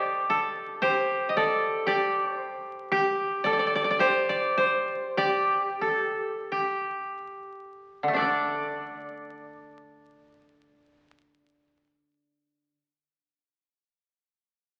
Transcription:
0.00 1.88 D3 medium
0.00 0.82 G4 medium
0.00 1.11 A4 medium
0.00 1.35 D5 medium
0.30 2.20 A4 medium
0.82 1.86 G4 medium
0.82 2.36 C5 medium
1.29 1.43 D#5 medium
1.37 3.27 A4 medium
1.37 1.87 D5 medium
1.87 2.91 G4 medium
1.87 2.36 D5 medium
2.36 3.44 C5 medium
2.92 3.99 G4 loud
3.44 5.36 A4 medium
3.44 3.53 D5 loud
3.53 3.59 D5 medium
3.59 3.66 D5 loud
3.67 3.75 D5 medium
3.75 3.84 D5 loud
3.84 3.90 D5 medium
3.90 4.29 D5 medium
3.99 5.17 G4 medium
3.99 4.57 C5 loud
4.29 5.18 D5 loud
4.58 6.29 C5 loud
5.17 6.51 G4 loud
5.17 7.28 D5 loud
5.81 7.72 A4 medium
6.52 8.56 G4 medium
8.03 12.67 D3 medium
8.08 12.72 A3 medium
8.13 12.78 D4 medium
8.13 12.75 D4 medium
8.13 12.77 D5 medium
8.18 12.78 A4 medium
8.22 12.82 D5 medium

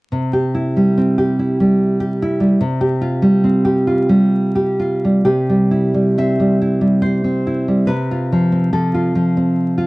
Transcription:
0.12 2.56 C3 soft
0.33 1.17 G4 soft
0.55 1.38 E4 soft
0.77 1.59 G3 soft
0.98 2.20 C4 soft
1.18 1.99 G4 soft
1.39 2.21 E4 soft
1.60 2.39 G3 soft
2.00 2.59 G4 medium
2.22 2.61 E4 medium
2.40 2.60 G3 soft
2.61 5.22 C3 medium
2.81 3.64 G4 medium
3.02 3.86 F4 medium
3.22 4.08 G3 soft
3.44 4.79 C4 soft
3.65 4.54 G4 medium
3.87 4.78 F4 soft
4.09 5.03 G3 soft
4.55 5.24 G4 soft
4.80 5.26 F4 soft
5.05 5.26 G3 soft
5.25 7.85 C3 soft
5.25 6.15 G4 medium
5.49 5.93 G3 soft
5.71 6.60 E4 soft
5.94 6.38 G3 soft
6.18 7.23 C4 soft
6.18 7.00 E5 medium
6.40 6.80 G3 soft
6.62 7.46 E4 soft
6.81 7.67 G3 soft
7.02 7.84 C5 medium
7.24 7.89 C4 soft
7.47 7.89 E4 soft
7.68 7.89 G3 soft
7.87 9.87 C3 soft
7.87 8.70 B4 medium
8.11 8.93 F4 soft
8.32 8.72 F3 soft
8.52 9.36 C4 soft
8.73 9.14 F3 soft
8.73 9.87 A4 medium
8.94 9.77 F4 soft
9.15 9.87 F3 soft
9.37 9.87 C4 soft
9.78 9.87 F4 soft

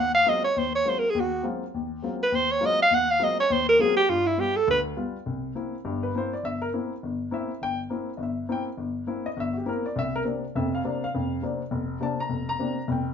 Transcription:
0.00 0.22 D#2 medium
0.00 0.14 F#5 loud
0.15 0.30 F5 loud
0.26 0.45 F#3 medium
0.26 0.45 G#3 soft
0.26 0.45 A#3 soft
0.26 0.45 C4 soft
0.26 0.45 F4 medium
0.26 0.44 D#5 medium
0.44 0.60 C#5 medium
0.56 0.81 D#2 medium
0.56 0.75 C5 medium
0.76 0.91 C#5 loud
0.85 1.04 F#3 medium
0.85 1.04 G#3 soft
0.85 1.04 A#3 soft
0.85 1.04 C4 soft
0.85 1.04 F4 medium
0.89 1.01 C5 medium
0.99 1.12 A#4 medium
1.10 1.22 G#4 medium
1.15 1.39 D#2 medium
1.20 1.46 F#4 medium
1.43 1.62 F#3 medium
1.43 1.62 G#3 medium
1.43 1.63 A#3 medium
1.43 1.62 C4 medium
1.43 1.63 F4 medium
1.74 1.99 D#2 medium
2.02 2.21 F#3 medium
2.02 2.22 G#3 soft
2.02 2.22 A#3 soft
2.02 2.22 C4 soft
2.02 2.22 F4 medium
2.23 2.37 B4 medium
2.32 2.57 D#2 medium
2.32 2.53 C5 medium
2.52 2.68 C#5 medium
2.61 2.80 F#3 medium
2.61 2.80 G#3 medium
2.61 2.80 A#3 medium
2.61 2.80 C4 soft
2.61 2.80 F4 medium
2.66 2.81 D#5 loud
2.83 2.96 F5 loud
2.91 3.16 D#2 medium
2.95 3.13 F#5 medium
3.11 3.25 F5 loud
3.19 3.39 F#3 medium
3.19 3.39 G#3 soft
3.19 3.39 A#3 soft
3.19 3.39 C4 soft
3.19 3.39 F4 medium
3.24 3.40 D#5 medium
3.40 3.54 C#5 medium
3.50 3.75 D#2 medium
3.50 3.68 C5 medium
3.69 3.83 A#4 loud
3.79 3.98 F#3 medium
3.79 3.98 G#3 medium
3.79 3.98 A#3 medium
3.79 3.98 C4 medium
3.79 3.98 F4 medium
3.79 3.96 G#4 medium
3.97 4.11 G4 loud
4.09 4.34 G2 medium
4.09 4.28 F4 medium
4.27 4.42 E4 medium
4.38 4.57 G3 medium
4.38 4.57 B3 soft
4.38 4.57 F4 medium
4.38 4.58 G4 medium
4.56 4.68 A4 medium
4.68 4.92 D2 medium
4.68 4.80 B4 medium
4.97 5.15 G3 medium
4.97 5.16 B3 medium
4.97 5.16 F4 medium
5.26 5.51 C2 medium
5.55 5.74 A#3 medium
5.55 5.74 C4 soft
5.55 5.74 E4 medium
5.85 6.10 G1 medium
5.85 6.10 G2 medium
6.03 6.14 B4 medium
6.15 6.33 A#3 medium
6.15 6.34 C4 medium
6.15 6.34 E4 medium
6.15 6.33 C5 medium
6.33 6.44 D5 medium
6.43 6.69 G1 medium
6.43 6.61 E5 medium
6.62 6.68 A#4 medium
6.73 6.92 A#3 medium
6.73 6.92 C4 soft
6.73 6.92 E4 medium
7.03 7.28 G1 medium
7.31 7.50 A#3 medium
7.31 7.51 C4 medium
7.31 7.51 E4 medium
7.31 7.60 E5 medium
7.62 7.86 G1 medium
7.62 7.79 G5 loud
7.90 8.09 A#3 medium
7.90 8.09 C4 medium
7.90 8.09 E4 medium
8.17 8.44 G1 medium
8.17 8.19 D#5 soft
8.23 8.48 E5 medium
8.49 8.68 A#3 medium
8.49 8.68 C4 medium
8.49 8.68 E4 medium
8.49 8.62 G5 medium
8.77 9.03 G1 medium
9.07 9.26 A#3 medium
9.07 9.26 C4 soft
9.07 9.26 E4 medium
9.26 9.37 D#5 medium
9.37 9.62 G1 medium
9.37 9.56 E5 medium
9.57 9.67 G4 medium
9.66 9.85 A#3 medium
9.66 9.85 C4 medium
9.66 9.85 E4 medium
9.66 9.85 A#4 medium
9.86 9.96 D5 medium
9.96 10.21 C2 medium
9.96 10.14 E5 loud
10.16 10.22 A#4 loud
10.24 10.43 C3 medium
10.24 10.43 A#3 soft
10.24 10.44 C4 soft
10.24 10.44 D4 medium
10.55 10.80 F1 medium
10.55 10.80 F2 medium
10.55 10.72 E5 medium
10.75 11.00 F5 medium
10.84 11.03 C3 medium
10.84 11.03 A#3 medium
10.84 11.03 C4 medium
10.84 11.03 D4 medium
11.04 11.40 F5 medium
11.14 11.39 F1 medium
11.14 11.38 F2 medium
11.42 11.61 C3 medium
11.42 11.61 A#3 soft
11.42 11.61 C4 medium
11.42 11.61 D4 medium
11.42 11.60 D5 medium
11.71 11.96 F1 medium
12.00 12.19 C3 medium
12.00 12.19 A#3 medium
12.00 12.19 C4 medium
12.00 12.19 D4 medium
12.00 12.19 A5 medium
12.20 12.46 A#5 medium
12.29 12.55 F1 medium
12.49 12.86 A#5 medium
12.59 12.78 C3 medium
12.59 12.78 A#3 soft
12.59 12.78 C4 soft
12.59 12.78 D4 medium
12.88 13.13 F1 medium
12.88 13.07 G5 medium

